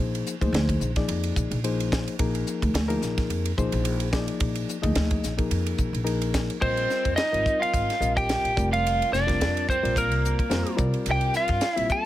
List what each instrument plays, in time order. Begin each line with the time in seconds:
Already playing: reed electric piano F3 A#3 D#4 G#4 C5
0.00 upright bass A#1
0.15 ride
0.27 hi-hat pedal
0.41 upright bass D2, reed electric piano F3 A#3 D#4 G#4 C5, kick, ride
0.53 upright bass D2, snare, ride
0.69 kick, ride
0.80 upright bass A#1, hi-hat pedal
0.96 reed electric piano F3 A#3 D#4 G#4 D5, kick, snare, ride
1.08 upright bass F2, ride
1.24 ride
1.36 upright bass A#1, kick, hi-hat pedal
1.51 upright bass A#1, ride
1.64 reed electric piano F3 A#3 D#4 G#4 C5, ride
1.80 ride
1.92 kick, snare, hi-hat pedal
2.08 ride
2.19 upright bass A#1, reed electric piano F3 A#3 D#4 G#4 A#4, kick, ride
2.35 ride
2.47 hi-hat pedal
2.62 upright bass D2, kick, ride
2.74 upright bass D2, snare, ride
2.88 reed electric piano F3 A#3 D#4 G#4 A#4, ride
3.02 upright bass A#1, snare, hi-hat pedal
3.18 kick, snare, ride
3.29 upright bass F2, ride
3.46 ride
3.57 upright bass A#1, reed electric piano F3 A#3 D#4 G#4 C5, kick, hi-hat pedal
3.72 upright bass A#1, ride
3.85 ride
4.00 ride
4.12 reed electric piano F3 A#3 D#4 G#4 D5, kick, snare, hi-hat pedal
4.28 ride
4.40 upright bass A#1, kick, ride
4.55 ride
4.69 hi-hat pedal
4.82 upright bass D2, reed electric piano F3 A#3 D#4 G#4 D#5, kick, ride
4.95 upright bass D2, snare, ride
5.11 kick, ride
5.23 upright bass A#1, snare, hi-hat pedal
5.37 reed electric piano F3 A#3 D#4 G#4 A#4, kick, ride
5.51 upright bass F2, ride
5.66 ride
5.78 upright bass A#1, kick, hi-hat pedal
5.93 upright bass A#1, ride
6.04 reed electric piano F3 A#3 D#4 G#4 A#4, ride
6.22 ride
6.34 kick, snare, hi-hat pedal
6.50 ride
6.61 upright bass A#1, reed electric piano G3 C4 F4 A#4 D#5, overdriven electric guitar C4, lead electric guitar C5, kick, crash
6.77 ride
6.90 snare, hi-hat pedal
7.05 upright bass F2, kick, ride
7.16 overdriven electric guitar D#4, lead electric guitar D#5, snare, hi-hat pedal, ride
7.32 upright bass G#1, reed electric piano G3 C4 F4 A#4 D#5, ride
7.46 kick, hi-hat pedal
7.60 overdriven electric guitar F4, lead electric guitar F5, muted upright bass stroke, ride
7.74 upright bass G#1, kick, hi-hat pedal, ride
7.90 snare, ride
8.00 upright bass A#1, reed electric piano G3 C4 F4 A#4 D#5, hi-hat pedal
8.17 overdriven electric guitar G4, lead electric guitar G5, kick, ride
8.29 snare, hi-hat pedal, ride
8.44 upright bass A#1, ride
8.56 upright bass F1, reed electric piano G3 C4 F4 A#4 D5, kick, hi-hat pedal
8.72 overdriven electric guitar F4, lead electric guitar F5, ride
8.87 hi-hat pedal, ride
9.02 ride
9.12 upright bass F1, overdriven electric guitar D4, lead electric guitar D5, snare, hi-hat pedal
9.27 reed electric piano G3 C4 F4 A#4 D5, kick, snare, ride
9.40 upright bass F2, snare, hi-hat pedal, ride
9.57 ride
9.69 overdriven electric guitar C4, lead electric guitar C5, kick, hi-hat pedal
9.83 upright bass A#1, reed electric piano G3 C4 F4 A#4 D5, ride
9.96 overdriven electric guitar A#3, lead electric guitar A#4, kick, hi-hat pedal, ride
10.10 upright bass C2, ride
10.25 hi-hat pedal
10.39 kick, ride
10.50 upright bass F2, reed electric piano G3 C4 F4 A#4 C5, snare, hi-hat pedal, ride
10.66 ride
10.76 upright bass C2, reed electric piano G3 C4 F4 A#4 D5, kick, hi-hat pedal
10.94 ride
11.06 upright bass C2, hi-hat pedal, ride
11.10 overdriven electric guitar G4, lead electric guitar G5
11.21 ride
11.34 overdriven electric guitar F4, lead electric guitar F5, snare, hi-hat pedal
11.48 upright bass G2, kick, snare, ride
11.61 snare, hi-hat pedal, ride
11.73 reed electric piano G3 A#3 C4 F4 E5, overdriven electric guitar E4
11.77 upright bass A#1, lead electric guitar E5, ride
11.89 overdriven electric guitar A4, lead electric guitar A5, kick, hi-hat pedal